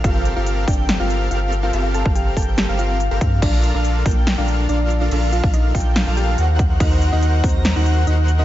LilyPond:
<<
  \new Staff \with { instrumentName = "Digital synth lead" } { \time 4/4 \key bes \major \tempo 4 = 142 f''8. f''8. g''8. f''8. f''4 | f''8. f''8. g''8. f''8. r16 f''16 f''8 | f''8. f''8. g''8. f''8. f''4 | f''8. f''8. g''8. f''8. ges''4 |
ges''8. ges''8. bes''8. ges''8. ges''4 | }
  \new Staff \with { instrumentName = "Synth pluck" } { \time 4/4 \key bes \major <f' f''>8 r16 <f' f''>8. <d' d''>8 r16 <f' f''>8. <f' f''>8 r16 <f' f''>16~ | <f' f''>8 <a' a''>8 <g' g''>8 <a' a''>8 <g' g''>8 <f' f''>4~ <f' f''>16 r16 | <d' d''>8 r16 <d' d''>8. <bes bes'>8 r16 <d' d''>8. <d' d''>8 r16 <d' d''>16~ | <d' d''>8 <f' f''>8 <ees' ees''>8 <f' f''>8 <f' f''>8 <g' g''>4~ <g' g''>16 r16 |
<ees' ees''>8 r16 <ees' ees''>8. <c' c''>8 r16 <ees' ees''>8. <ees' ees''>8 r16 <ees' ees''>16 | }
  \new Staff \with { instrumentName = "Supersaw synth" } { \time 4/4 \key bes \major <c' g' a' bes' f''>8. <c' g' a' bes' f''>8. <g' a'>8. <c' g' a' bes' f''>8. <c' g' a' bes' f''>4 | <c' g' a' bes' f''>8. <c' g' a' bes' f''>8. <c' g' a' bes' g''>8. <c' g' a' bes' f''>8. r16 <c' g' a' bes' f''>16 <c' a'>8 | <d' f' a' bes' f''>8. <d' f' a' bes' f''>8. <d' f' a' bes' g''>8. <d' f' a' bes' f''>8. <d' f' a' bes' f''>4 | <d' f' a' bes' f''>8. <d' f' f''>8. <d' f' a' bes' g''>8. <d' f' a' bes' f''>8. <ees' ges' bes' c'' ges''>4 |
<ees' ges' bes' c'' ges''>8. <ees' ges' bes' c'' ges''>8. r8. <ees' ges' bes' c'' ges''>8. <ees' ges' bes' c'' ges''>4 | }
  \new Staff \with { instrumentName = "Sub bass" } { \clef bass \time 4/4 \key bes \major g,,8. g,,8. g,,8. g,,8. g,,4 | g,,8. g,,8. g,,8. g,,4 g,,16 g,8 | bes,,8. bes,,8. bes,,8. bes,,8. bes,,4 | bes,,8. bes,,8. bes,,8. bes,,8. ees,4 |
ees,8. ees,8. ees,8. ees,8. ees,4 | }
  \new DrumStaff \with { instrumentName = "Drums" } \drummode { \time 4/4 <hh bd>8 hh8 hh8 <hho bd>32 hh16. <hh sn>8 hh8 hh8 hh8 | hh8 hh16 bd16 hh8 <hho bd>32 hh16. <hh sn>8 hh8 hh8 <hh bd>8 | <cymc hh bd>8 hh8 hh8 <hho bd>32 hh16. <cymc hh sn>8 hh8 hh8 hh8 | <cymc hh>8 hh16 bd16 hh8 <hho bd>32 hh16. <cymc hh sn>8 hh8 hh8 <hh bd>8 |
<cymc hh bd>8 hh8 hh8 <hho bd>32 hh16. <cymc hh sn>8 hh8 hh8 hh8 | }
>>